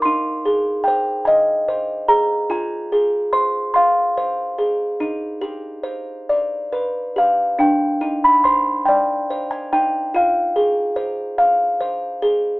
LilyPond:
\new Staff \with { instrumentName = "Music box" } { \time 6/8 \key g \phrygian \tempo 4. = 48 << { c'''4 g''8 aes''4 bes''8 | aes''4 c'''8 c'''4.~ | c'''2 r8 f''8 | \key c \minor g''8. b''16 c'''8 g''8. aes''16 g''8 |
f''2~ f''8 r8 | } \\ { ees'8 aes'8 c''8 ees''8 c''8 aes'8 | f'8 aes'8 c''8 f''8 c''8 aes'8 | ees'8 g'8 c''8 d''8 b'8 g'8 | d'8 ees'8 c''8 d''8 c''8 ees'8 |
f'8 aes'8 c''8 f''8 c''8 aes'8 | } >> }